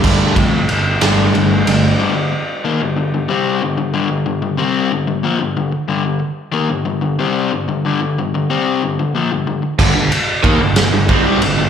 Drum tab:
CC |x-----|------|------|------|
RD |-xxxxx|------|------|------|
SD |---o--|------|------|------|
BD |oo----|------|------|------|

CC |------|x-----|
RD |------|-xxxxx|
SD |------|---o--|
BD |------|o-o-o-|